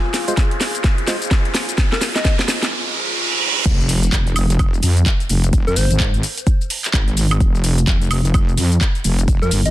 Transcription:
0.00 2.72 F4 medium
0.00 2.72 G#4 medium
0.00 2.72 C5 medium
0.00 2.72 G#5 medium
0.00 riser medium
0.14 snare medium
0.14 open hi-hat loud
0.14 shaker medium
0.28 0.34 G#3 medium
0.28 0.34 F4 medium
0.28 0.34 C5 medium
0.28 closed hi-hat medium
0.28 shaker soft
0.37 kick loud
0.37 snare medium
0.37 closed hi-hat medium
0.37 shaker soft
0.51 closed hi-hat soft
0.61 snare medium
0.61 open hi-hat loud
0.61 shaker medium
0.75 closed hi-hat soft
0.75 shaker soft
0.84 kick loud
0.84 snare medium
0.84 closed hi-hat medium
0.84 shaker soft
0.98 closed hi-hat soft
1.07 1.16 G#3 medium
1.07 1.16 F4 medium
1.07 1.16 C5 medium
1.07 snare medium
1.07 open hi-hat loud
1.07 shaker medium
1.22 closed hi-hat soft
1.22 shaker soft
1.31 kick loud
1.31 snare medium
1.31 closed hi-hat medium
1.31 shaker soft
1.45 closed hi-hat soft
1.55 snare medium
1.55 open hi-hat medium
1.55 shaker medium
1.69 closed hi-hat medium
1.69 shaker soft
1.78 kick loud
1.78 snare medium
1.78 closed hi-hat medium
1.78 shaker soft
1.92 2.00 A#4 medium
1.92 snare medium
2.01 snare medium
2.01 open hi-hat loud
2.01 shaker medium
2.16 2.21 D#5 medium
2.16 snare medium
2.16 closed hi-hat medium
2.16 shaker soft
2.25 2.34 D#5 medium
2.25 kick loud
2.25 snare loud
2.25 closed hi-hat medium
2.25 shaker soft
2.39 snare medium
2.39 closed hi-hat soft
2.48 snare loud
2.48 open hi-hat loud
2.48 shaker medium
2.63 snare medium
2.63 closed hi-hat medium
2.63 shaker soft
2.72 reverse cymbal medium
3.66 4.11 F1 loud
3.66 kick loud
3.66 closed hi-hat medium
3.66 crash loud
3.66 impact medium
3.66 shaker soft
3.80 shaker soft
3.89 open hi-hat loud
3.89 shaker medium
4.03 closed hi-hat medium
4.03 shaker soft
4.12 4.58 F1 loud
4.12 kick loud
4.12 clap loud
4.12 closed hi-hat medium
4.12 shaker soft
4.27 closed hi-hat soft
4.27 shaker soft
4.36 open hi-hat loud
4.36 high woodblock medium
4.36 shaker medium
4.50 closed hi-hat medium
4.50 shaker soft
4.59 4.81 F1 loud
4.59 kick loud
4.59 closed hi-hat medium
4.59 high woodblock medium
4.59 shaker soft
4.74 shaker soft
4.83 5.05 F2 loud
4.83 open hi-hat loud
4.83 shaker medium
4.97 closed hi-hat medium
4.97 shaker soft
5.06 kick loud
5.06 clap loud
5.06 closed hi-hat medium
5.06 shaker soft
5.20 closed hi-hat soft
5.20 shaker soft
5.29 5.65 F1 loud
5.29 open hi-hat medium
5.29 shaker medium
5.44 closed hi-hat medium
5.44 shaker soft
5.53 kick loud
5.53 closed hi-hat medium
5.53 shaker soft
5.67 5.75 F2 medium
5.67 5.75 A#4 medium
5.67 shaker soft
5.76 5.88 G1 loud
5.76 6.23 C5 loud
5.76 open hi-hat loud
5.76 shaker medium
5.91 6.22 G#1 loud
5.91 closed hi-hat medium
5.91 shaker soft
6.00 kick loud
6.00 clap loud
6.00 closed hi-hat medium
6.00 shaker soft
6.14 closed hi-hat soft
6.14 shaker soft
6.23 open hi-hat loud
6.23 shaker medium
6.38 closed hi-hat medium
6.38 shaker soft
6.47 kick loud
6.47 closed hi-hat medium
6.47 shaker soft
6.61 shaker soft
6.70 open hi-hat loud
6.70 shaker medium
6.84 clap soft
6.84 closed hi-hat medium
6.84 shaker soft
6.94 7.39 G#1 loud
6.94 kick loud
6.94 clap loud
6.94 closed hi-hat medium
6.94 shaker soft
7.08 closed hi-hat soft
7.08 shaker soft
7.17 open hi-hat loud
7.17 shaker medium
7.31 closed hi-hat medium
7.31 high woodblock medium
7.31 shaker soft
7.40 7.86 F1 loud
7.40 kick loud
7.40 closed hi-hat medium
7.40 shaker soft
7.55 shaker soft
7.64 open hi-hat loud
7.64 shaker medium
7.78 closed hi-hat medium
7.78 shaker soft
7.87 8.33 F1 loud
7.87 kick loud
7.87 clap loud
7.87 closed hi-hat medium
7.87 shaker soft
8.02 closed hi-hat soft
8.02 shaker soft
8.11 open hi-hat loud
8.11 high woodblock medium
8.11 shaker medium
8.25 closed hi-hat medium
8.25 shaker soft
8.34 8.56 F1 medium
8.34 kick loud
8.34 closed hi-hat medium
8.34 high woodblock medium
8.34 shaker soft
8.49 shaker soft
8.58 8.80 F2 loud
8.58 open hi-hat loud
8.58 shaker medium
8.72 closed hi-hat medium
8.72 shaker soft
8.81 kick loud
8.81 clap loud
8.81 closed hi-hat medium
8.81 shaker soft
8.95 closed hi-hat soft
8.95 shaker soft
9.04 9.40 F1 loud
9.04 open hi-hat loud
9.04 shaker medium
9.19 closed hi-hat medium
9.19 shaker soft
9.28 kick loud
9.28 closed hi-hat medium
9.28 shaker soft
9.42 9.50 F2 medium
9.42 9.50 A#4 medium
9.42 shaker soft
9.51 9.63 G1 loud
9.51 open hi-hat loud
9.51 shaker medium
9.66 9.71 G#1 loud
9.66 9.71 D#5 medium
9.66 closed hi-hat medium
9.66 shaker soft

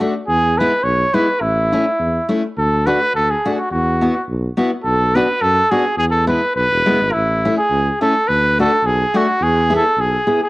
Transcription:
0.00 0.13 A3 medium
0.00 0.13 D4 medium
0.00 0.13 F#4 medium
0.27 0.65 E2 medium
0.27 0.59 G#4 medium
0.58 0.71 G#3 medium
0.58 0.72 B3 medium
0.58 0.72 E4 medium
0.58 0.85 B4 medium
0.83 1.04 B1 medium
0.83 1.15 C#5 medium
1.14 1.26 G#3 soft
1.14 1.27 B3 soft
1.14 1.27 E4 medium
1.14 1.42 B4 medium
1.41 1.78 A1 medium
1.41 2.30 E4 medium
1.72 1.85 A3 medium
1.72 1.85 C#4 soft
1.72 1.84 E4 medium
1.99 2.19 E2 medium
2.29 2.42 A3 medium
2.29 2.41 C#4 medium
2.29 2.42 E4 medium
2.57 2.94 D2 medium
2.57 2.87 A4 medium
2.86 2.99 A3 medium
2.86 3.00 D4 soft
2.86 2.99 F#4 medium
2.86 3.13 B4 medium
3.15 3.35 D2 medium
3.15 3.32 A4 medium
3.30 3.54 G#4 medium
3.45 3.57 A3 medium
3.45 3.58 D4 medium
3.45 3.57 F#4 medium
3.55 3.71 F#4 medium
3.55 3.59 G#4 soft
3.71 4.08 E2 medium
3.71 4.24 F#4 medium
4.01 4.14 B3 medium
4.01 4.14 E4 soft
4.01 4.14 F#4 medium
4.28 4.48 B1 medium
4.57 4.70 B3 medium
4.57 4.70 E4 medium
4.57 4.70 F#4 medium
4.84 5.22 B1 medium
4.84 5.17 A4 medium
5.15 5.27 B3 medium
5.15 5.27 D4 medium
5.15 5.27 F#4 medium
5.15 5.43 B4 loud
5.41 5.62 F#2 medium
5.41 5.72 A4 loud
5.71 5.84 B3 medium
5.71 5.84 D4 medium
5.71 5.84 F#4 medium
5.71 5.98 G#4 medium
5.97 6.35 E2 medium
5.97 6.05 G#4 medium
6.11 6.27 A4 medium
6.27 6.40 G#3 soft
6.27 6.40 B3 medium
6.27 6.40 E4 medium
6.27 6.53 B4 medium
6.56 6.66 B1 medium
6.56 7.14 B4 medium
6.71 6.86 E1 medium
6.86 6.99 F#1 medium
6.86 6.99 G#3 medium
6.86 6.99 B3 medium
6.86 6.99 E4 medium
7.00 7.12 G#1 medium
7.12 7.51 A1 medium
7.12 7.57 E4 medium
7.45 7.57 A3 soft
7.45 7.57 C#4 soft
7.45 7.57 E4 medium
7.58 7.99 G#4 medium
7.70 7.91 C#2 medium
8.01 8.13 A3 medium
8.01 8.13 C#4 soft
8.01 8.13 E4 medium
8.01 8.29 A4 medium
8.28 8.65 D2 medium
8.28 8.59 B4 medium
8.59 8.71 A3 soft
8.59 8.71 D4 soft
8.59 8.71 F#4 medium
8.59 8.88 A4 medium
8.83 9.04 B1 medium
8.83 9.18 G#4 medium
9.14 9.27 A3 medium
9.14 9.27 D4 medium
9.14 9.26 F#4 medium
9.14 9.44 F#4 medium
9.41 9.78 E2 medium
9.41 9.73 G#4 medium
9.70 9.83 B3 medium
9.70 9.83 E4 medium
9.70 9.83 G#4 medium
9.76 10.02 A4 medium
9.97 10.17 B1 medium
9.97 10.43 G#4 medium
10.27 10.39 B3 soft
10.27 10.40 E4 soft
10.27 10.39 G#4 medium
10.43 10.49 G#4 medium

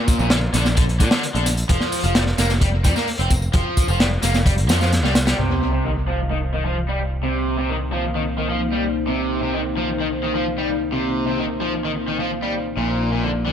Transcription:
0.00 0.18 A#2 medium
0.08 kick medium
0.08 closed hi-hat medium
0.08 tambourine medium
0.19 0.48 A#1 medium
0.19 0.30 A#2 medium
0.19 tambourine soft
0.30 0.37 D3 medium
0.30 snare loud
0.30 closed hi-hat medium
0.30 tambourine soft
0.54 1.02 A#1 loud
0.54 0.65 D3 loud
0.54 snare soft
0.54 closed hi-hat medium
0.54 tambourine medium
0.65 snare soft
0.65 tambourine soft
0.77 0.83 D3 medium
0.77 kick loud
0.77 closed hi-hat medium
0.77 tambourine soft
0.89 closed hi-hat soft
1.00 1.08 A#2 loud
1.00 1.10 D3 medium
1.00 kick medium
1.00 closed hi-hat medium
1.00 tambourine medium
1.11 1.22 D3 loud
1.11 snare loud
1.11 tambourine soft
1.23 closed hi-hat medium
1.23 tambourine soft
1.35 1.63 A#1 medium
1.35 1.45 D3 medium
1.35 closed hi-hat soft
1.46 closed hi-hat medium
1.46 tambourine medium
1.57 closed hi-hat soft
1.57 tambourine soft
1.69 1.77 F1 loud
1.69 2.03 F3 medium
1.69 kick loud
1.69 closed hi-hat medium
1.69 tambourine soft
1.81 snare soft
1.92 open hi-hat medium
1.92 tambourine medium
2.04 2.32 F1 loud
2.04 2.15 F3 medium
2.04 closed hi-hat soft
2.04 tambourine soft
2.15 2.22 G3 medium
2.15 snare loud
2.15 closed hi-hat medium
2.15 tambourine soft
2.26 snare medium
2.38 2.86 F1 loud
2.38 2.50 A#3 loud
2.38 snare medium
2.38 closed hi-hat medium
2.38 tambourine medium
2.49 snare soft
2.49 tambourine soft
2.61 2.68 G3 medium
2.61 kick loud
2.61 closed hi-hat medium
2.61 tambourine soft
2.84 2.93 F2 loud
2.84 2.95 G3 medium
2.84 kick loud
2.84 closed hi-hat medium
2.84 tambourine medium
2.96 3.07 A#3 loud
2.96 snare soft
2.96 tambourine soft
3.07 open hi-hat medium
3.07 tambourine soft
3.19 3.48 F1 medium
3.19 3.30 C4 medium
3.19 closed hi-hat soft
3.30 kick loud
3.30 closed hi-hat medium
3.30 tambourine medium
3.42 tambourine soft
3.53 3.62 F1 medium
3.53 3.87 F3 medium
3.53 kick loud
3.53 closed hi-hat medium
3.53 tambourine soft
3.77 kick medium
3.77 closed hi-hat medium
3.77 tambourine medium
3.88 4.17 F1 loud
3.88 4.00 F3 medium
3.88 tambourine soft
4.00 4.06 G3 medium
4.00 snare loud
4.00 closed hi-hat medium
4.00 tambourine soft
4.22 4.69 F1 loud
4.22 4.34 A#3 loud
4.22 snare soft
4.22 closed hi-hat medium
4.22 tambourine medium
4.34 snare soft
4.34 tambourine soft
4.46 4.52 G3 medium
4.46 kick loud
4.46 closed hi-hat medium
4.46 tambourine soft
4.58 closed hi-hat soft
4.69 5.04 F2 loud
4.69 4.79 F3 medium
4.69 snare medium
4.69 closed hi-hat medium
4.69 tambourine medium
4.81 4.91 F3 medium
4.81 snare medium
4.81 tambourine soft
4.92 snare medium
4.92 closed hi-hat medium
4.92 tambourine soft
5.04 5.32 C2 loud
5.04 5.14 G3 medium
5.04 snare soft
5.15 snare loud
5.15 closed hi-hat medium
5.15 tambourine medium
5.27 5.37 G3 loud
5.27 snare loud
5.27 closed hi-hat medium
5.27 tambourine soft
5.38 12.75 C2 medium
5.38 5.72 C3 medium
5.38 12.73 A#3 medium
5.38 12.73 D#4 medium
5.38 12.73 C5 medium
5.38 sub drop medium
5.73 5.84 C3 medium
5.85 5.91 D#3 medium
6.08 6.19 F3 loud
6.31 6.37 D#3 medium
6.54 6.64 D#3 medium
6.65 6.76 F3 loud
6.88 6.99 G3 medium
7.23 7.57 C3 medium
7.58 7.69 C3 medium
7.70 7.76 D#3 medium
7.92 8.03 F3 medium
8.15 8.22 D#3 medium
8.38 8.49 D#3 medium
8.50 8.60 F3 loud
8.73 8.83 G3 medium
9.08 9.41 C3 medium
9.42 9.53 C3 medium
9.54 9.60 D#3 medium
9.77 9.88 F3 loud
10.00 10.06 D#3 medium
10.23 10.34 D#3 medium
10.35 10.45 F3 loud
10.58 10.68 G3 medium
10.92 11.26 C3 medium
11.27 11.38 C3 medium
11.39 11.45 D#3 medium
11.61 11.72 F3 loud
11.85 11.91 D#3 medium
12.08 12.18 D#3 medium
12.20 12.30 F3 loud
12.42 12.53 G3 medium
12.77 13.52 A#1 medium
12.77 13.11 A#2 medium
12.77 13.52 A#3 medium
12.77 13.52 F4 medium
12.77 13.52 D5 medium
13.12 13.22 A#2 medium
13.23 13.29 D3 medium
13.46 13.52 D3 loud

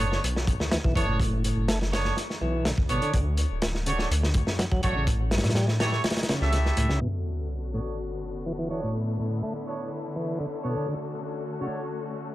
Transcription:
0.00 0.18 F#1 medium
0.00 0.20 B3 medium
0.00 0.20 D4 medium
0.00 0.20 A4 medium
0.00 0.20 C#5 loud
0.12 snare soft
0.24 0.54 B1 loud
0.24 closed hi-hat medium
0.36 snare soft
0.47 kick medium
0.47 closed hi-hat medium
0.60 0.77 D2 medium
0.60 snare medium
0.71 0.78 E3 medium
0.71 snare loud
0.71 closed hi-hat medium
0.84 0.93 B1 loud
0.84 0.94 E3 medium
0.84 kick medium
0.95 1.51 F#1 medium
0.95 1.06 E3 medium
0.95 1.17 B3 loud
0.95 1.17 D4 medium
0.95 1.17 A4 medium
0.95 1.17 C#5 loud
0.95 kick medium
0.95 closed hi-hat medium
1.08 1.43 A2 medium
1.20 kick loud
1.20 closed hi-hat medium
1.44 1.67 A2 medium
1.44 closed hi-hat medium
1.57 2.12 F#1 medium
1.68 1.79 A3 medium
1.68 snare loud
1.68 closed hi-hat medium
1.82 snare medium
1.93 2.14 B3 loud
1.93 2.14 D4 medium
1.93 2.14 A4 medium
1.93 2.14 C#5 loud
1.93 snare medium
1.93 closed hi-hat medium
2.04 snare soft
2.17 snare soft
2.17 closed hi-hat medium
2.30 snare soft
2.41 2.72 B1 medium
2.41 2.64 E3 medium
2.65 2.72 D3 medium
2.65 snare loud
2.65 closed hi-hat medium
2.78 2.91 D2 medium
2.78 kick medium
2.89 2.99 F#1 medium
2.89 3.01 B2 medium
2.89 3.11 B3 loud
2.89 3.11 D4 medium
2.89 3.11 A4 medium
2.89 3.11 C#5 loud
2.89 closed hi-hat medium
3.02 3.12 D3 medium
3.02 closed hi-hat soft
3.14 3.45 D2 loud
3.14 3.20 D3 medium
3.14 kick loud
3.14 closed hi-hat medium
3.37 closed hi-hat medium
3.51 4.05 D1 medium
3.62 snare loud
3.62 closed hi-hat medium
3.75 snare soft
3.86 3.93 C#3 medium
3.86 4.07 A3 medium
3.86 4.07 D4 medium
3.86 4.07 F#4 medium
3.86 4.07 C#5 loud
3.86 closed hi-hat medium
3.99 snare soft
4.10 4.41 D2 loud
4.10 closed hi-hat medium
4.23 snare soft
4.34 kick medium
4.34 closed hi-hat medium
4.47 4.64 F#2 medium
4.47 snare medium
4.59 4.65 F#3 medium
4.59 snare loud
4.59 closed hi-hat medium
4.72 4.80 D2 loud
4.72 4.81 F#3 loud
4.72 kick medium
4.83 5.39 A1 loud
4.83 4.94 F#3 medium
4.83 5.04 A3 loud
4.83 5.04 D4 medium
4.83 5.04 F#4 medium
4.83 5.04 C#5 loud
4.83 kick medium
4.83 closed hi-hat medium
4.96 5.07 C#3 medium
5.07 kick loud
5.07 closed hi-hat medium
5.31 5.55 G2 medium
5.31 snare medium
5.31 closed hi-hat medium
5.38 snare medium
5.38 closed hi-hat medium
5.44 5.99 A2 medium
5.44 snare medium
5.44 closed hi-hat medium
5.49 snare medium
5.49 closed hi-hat medium
5.55 5.66 G3 medium
5.55 snare loud
5.55 closed hi-hat medium
5.68 snare medium
5.80 6.01 A3 medium
5.80 6.01 E4 medium
5.80 6.01 G4 medium
5.80 6.01 C#5 loud
5.80 snare loud
5.80 closed hi-hat medium
5.92 snare soft
6.04 snare medium
6.04 closed hi-hat medium
6.10 snare medium
6.10 closed hi-hat medium
6.16 snare medium
6.16 closed hi-hat medium
6.23 snare medium
6.23 closed hi-hat medium
6.29 6.51 C#3 medium
6.29 snare loud
6.29 closed hi-hat medium
6.41 6.71 C#2 medium
6.41 6.99 A3 medium
6.41 6.99 E4 medium
6.41 6.99 G4 medium
6.41 6.99 E5 loud
6.41 snare soft
6.52 6.59 C#3 medium
6.52 snare soft
6.52 closed hi-hat medium
6.66 snare soft
6.77 6.86 C#2 medium
6.77 6.88 A2 medium
6.77 closed hi-hat medium
6.89 6.98 C#2 medium
6.89 6.99 C#3 medium
6.89 snare soft
7.01 7.07 B2 medium
7.01 12.35 D3 medium
7.01 10.84 B3 medium
7.01 12.35 C#4 medium
7.01 8.93 F#4 medium
7.01 12.35 A4 medium
7.01 sub drop medium
7.73 7.80 A2 medium
7.73 7.94 B3 medium
7.73 7.95 D4 medium
7.73 7.94 A4 medium
7.73 7.94 C#5 medium
8.46 8.52 E3 medium
8.59 8.68 E3 medium
8.70 8.81 E3 medium
8.70 8.91 B3 medium
8.70 8.91 D4 medium
8.70 8.91 A4 medium
8.70 8.91 C#5 loud
8.83 9.18 A2 medium
8.95 10.86 E4 medium
9.19 9.42 A2 medium
9.43 9.53 A3 medium
9.67 9.88 B3 medium
9.67 9.88 D4 medium
9.67 9.88 A4 medium
9.67 9.88 C#5 medium
10.16 10.39 E3 medium
10.40 10.46 D3 medium
10.64 10.75 B2 medium
10.64 10.85 B3 medium
10.64 10.85 D4 medium
10.64 10.85 A4 medium
10.64 10.85 C#5 loud
10.76 10.86 D3 medium
10.88 10.94 D3 medium
10.88 12.35 A3 medium
10.88 12.35 F#4 medium
11.61 11.67 C#3 medium
11.61 11.82 A3 medium
11.61 11.82 D4 medium
11.61 11.82 F#4 medium
11.61 11.82 C#5 medium

